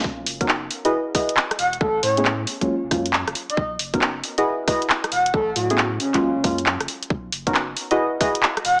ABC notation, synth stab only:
X:1
M:4/4
L:1/16
Q:"Swing 16ths" 1/4=136
K:B
V:1 name="Synth stab"
z3 [B,CDFA] z3 [EFGBd]2 z [EFGBd] z4 z | z3 [=A,B,CEG] z3 [F,G,^A,C^E]2 z [F,G,A,CE] z4 z | z3 [B,CDFA] z3 [EFGBd]2 z [EFGBd] z4 z | z3 [=A,B,CEG] z3 [F,G,^A,C^E]2 z [F,G,A,CE] z4 z |
z3 [B,CDFA] z3 [EFGBd]2 z [EFGBd] z4 z |]